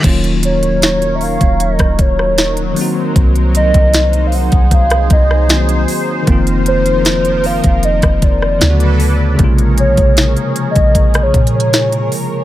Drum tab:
CC |x-----------------------------------------------|------------------------------------------------|------------------------------------------------|------------------------------------------------|
HH |x--x--x--x--x--x--o--x--x--x--x-----x--x--o-----|x--x--x--x--x--x--o--x--x--x--x-----x--x--o-----|x--x--x--x--x--x--o--x--x--x--x-----x--x--o-----|x--x--x--x--x--x--x--x--x--x--x-x-x-x--x--o-----|
SD |------------o--------------r-----r--o-----------|------------o--------------r-----r--o-----------|------------o--------------r-----r--o-----------|------------o--------------r--------o-----------|
BD |o--------------------o-----o--o-----------------|o--------o-----------o--o-----o-----------------|o--------------------o-----o--o-----------------|o--------o-----------o--o-----o-----------------|